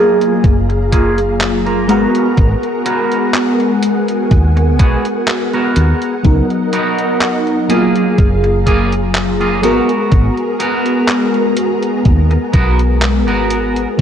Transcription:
Already playing: F#3 A#3 F4 G#4 F5 A#5
0.21 closed hi-hat
0.44 F#1, kick, closed hi-hat
0.69 muted clean electric guitar stroke, closed hi-hat
0.92 A#3 F4 G#4, kick, closed hi-hat
1.18 closed hi-hat
1.41 muted clean electric guitar stroke, clap, closed hi-hat
1.66 A#3 F4 A#4, closed hi-hat
1.88 G#1 G#3 B3 F#4 A#4 F#5, closed hi-hat
2.15 closed hi-hat
2.37 G#1, kick, closed hi-hat
2.63 closed hi-hat
2.85 B3 F#4 A#4, closed hi-hat
3.12 closed hi-hat
3.34 clap, closed hi-hat
3.60 closed hi-hat
3.83 G#5, closed hi-hat
4.08 closed hi-hat
4.31 D#2, kick, closed hi-hat
4.57 muted clean electric guitar stroke, closed hi-hat
4.79 B1 B3 F#4 G#4, kick, closed hi-hat
5.05 closed hi-hat
5.28 muted clean electric guitar stroke, clap, closed hi-hat
5.53 B3 F#4 A#4, closed hi-hat
5.76 D#2, closed hi-hat
6.02 closed hi-hat
6.23 C#2 F#3 B3 D#4 A#4 D#5, kick, closed hi-hat
6.50 closed hi-hat
6.73 B3 D#4 F#4 A#4, closed hi-hat
6.98 closed hi-hat
7.21 clap, closed hi-hat
7.47 closed hi-hat
7.68 F#3 A#3 F4 G#4 F5 A#5, closed hi-hat
7.96 closed hi-hat
8.18 F#1, kick, closed hi-hat
8.44 muted clean electric guitar stroke, closed hi-hat
8.66 A#3 F4 G#4, kick, closed hi-hat
8.92 closed hi-hat
9.15 muted clean electric guitar stroke, clap, closed hi-hat
9.40 A#3 F4 G#4, closed hi-hat
9.62 G#1 G#3 B3 F#4 A#4, closed hi-hat
9.89 closed hi-hat
10.12 G#1, kick, closed hi-hat
10.37 closed hi-hat
10.60 B3 F#4 A#4, closed hi-hat
10.86 closed hi-hat
11.08 clap, closed hi-hat
11.34 closed hi-hat
11.57 closed hi-hat
11.83 closed hi-hat
12.05 D#2, kick, closed hi-hat
12.31 muted clean electric guitar stroke, closed hi-hat
12.53 B1 B3 F#4 A#4, kick, closed hi-hat
12.79 closed hi-hat
13.02 muted clean electric guitar stroke, clap, closed hi-hat
13.27 G#1 B3 F#4 A#4, closed hi-hat
13.50 closed hi-hat
13.76 closed hi-hat
13.97 F#3

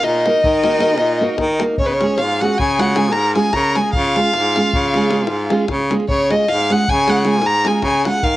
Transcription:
0.03 A#2 D#4 D#5, davul high
0.15 davul high
0.26 A#3 D#4 F#4 A#4, davul high
0.35 davul high
0.44 D#3, davul low
0.64 A#3 D#4 F#4 A#4, davul high
0.72 davul high
0.80 A#3 D#4 F#4 A#4, davul high
0.89 davul high
0.98 A#2, davul high
1.21 A#3 D#4 F#4 A#4
1.29 davul high
1.38 D#3, davul high, davul low
1.50 davul high
1.60 A#3 D#4 F#4 A#4, davul high
1.78 C#3 C#4 C#5, davul low
1.86 B3 B4, davul high
1.93 C#4 C#5
2.01 G#3 C#4 F4 G#4, davul high
2.18 G#2 F4 F5, davul high
2.30 davul high
2.41 G#3 C#4 F4 F#4 G#4 F#5, davul high
2.50 davul high
2.58 C#3 G#4 G#5, davul low
2.78 G#3 C#4 F4 F#4 G#4 F#5, davul high
2.88 davul high
2.96 G#3 C#4 F4 G#4 G#5, davul high
3.12 G#2 A#4 A#5, davul high
3.35 G#3 C#4 F4 G#4 G#5, davul high
3.45 davul high
3.53 C#3 A#4 A#5, davul high, davul low
3.75 G#3 C#4 F4 G#4 G#5, davul high
3.93 C#3 F4 F5, davul low
4.05 davul high
4.16 G#3 C#4 F4 G#4, davul high
4.34 G#2, davul high
4.45 davul high
4.56 G#3 C#4 F4 G#4, davul high
4.65 davul high
4.73 C#3, davul low
4.84 davul high
4.94 G#3 C#4 F4 G#4, davul high
5.03 davul high
5.11 G#3 C#4 F4 G#4, davul high
5.27 G#2, davul high
5.50 G#3 C#4 F4 G#4, davul high
5.59 davul high
5.68 C#3, davul high, davul low
5.80 davul high
5.90 G#3 C#4 F4 G#4, davul high
6.00 davul high
6.08 C#3 C#5, davul low
6.20 davul high
6.30 G#3 C#4 F4 G#4 D#5, davul high
6.48 G#2 F5, davul high
6.60 davul high
6.70 G#3 C#4 F4 G#4 F#5, davul high
6.88 C#3 G#5, davul low
7.08 G#3 C#4 F4 G#4 F#5, davul high
7.16 davul high
7.25 G#3 C#4 F4 G#4, davul high
7.29 G#5
7.42 G#2, davul high
7.46 A#5
7.65 G#3 C#4 F4 G#4 G#5, davul high
7.82 C#3 G#5, davul high, davul low
7.94 davul high
8.05 G#3 C#4 F4 G#4 F#5, davul high
8.23 D#3 F5, davul low

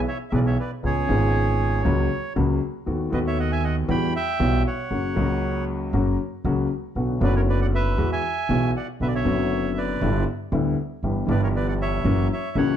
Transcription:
0.08 C#5 E5
0.30 B1 B2 E3 G#3 B3 G#4 E5
0.34 B4 D5
0.46 C#5 E5
0.59 B4 D5
0.83 C#2 C#3 G#3 B3 F4 G#4 C#5
1.07 G#1 G#2 C#3 G#3 B3
1.11 F4
1.85 C#2 C#3 F#3 A#3 F#4
2.36 C#2 C#3 F#3 A#3 F#4
2.86 D#2 D#3 A3 B3 F#4
3.10 D#2 D#3 A3 B3 F#4 B4 D#5
3.27 C#5 E5
3.40 D#5 F#5
3.52 E5 G#5
3.64 D#5 F#5
3.88 E2 E3 G3 B3 F#4 G5 B5
4.16 E5 G5
4.39 B1 B2 E3 G3 B3 F#4
4.67 C#5 F#5
4.91 F#1 F#2 C#3 F#3 A#3 F#4
5.16 C#2 C#3 F#3 A#3 F#4
5.93 F#1 F#2 C#3 F#3 A#3 F#4
6.44 C#2 C#3 F#3 A#3 F#4
6.95 B1 B2 D3 F#3 B3 F#4
7.19 F#1 F#2 D3 F#3 B3
7.23 F#4 B4 D5
7.36 A#4 C#5
7.49 B4 D5
7.62 D5 F#5
7.75 B4 E5
7.98 E2 E3 G#3 B3 F#4
8.12 E5 G#5
8.49 B1 B2 E3 G#3 B3 F#4
8.77 D5 F#5
9.00 B1 B2 D3 F#3 B3 F#4 B4 E5
9.07 D5
9.15 C#5 E5
9.23 F#1 F#2 D3 F#3 B3
9.28 F#4
9.78 B4 D5
10.01 G1 G2 D3 G3 B3 E4
10.52 D2 D3 G3 B3 E4
11.03 G1 G2 E3 G3 B3 G4
11.27 G1 G2 E3 G3 B3 G4 D5
11.31 B4
11.43 A#4 C#5
11.56 B4 D5
11.68 D5 F#5
11.81 C#5 E5
12.05 F#1 F#2 E3 F#3 A#3 C#4 F#4
12.32 C#5 E5
12.55 C#2 C#3 E3 A#3 C#4 F#4 C#5 F#5

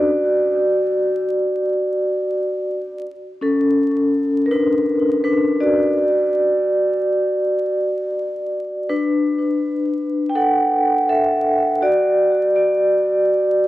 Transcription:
Already playing: D4 F#4 B4 D5
3.41 C#4 A4
4.46 A#4
4.51 D4 B4
5.24 D4 B4
5.60 F#4 D5
8.89 D4 B4
10.29 G5
10.35 A4 F#5
11.09 A4 E5
11.82 F#4 D5
12.56 F#4 D5

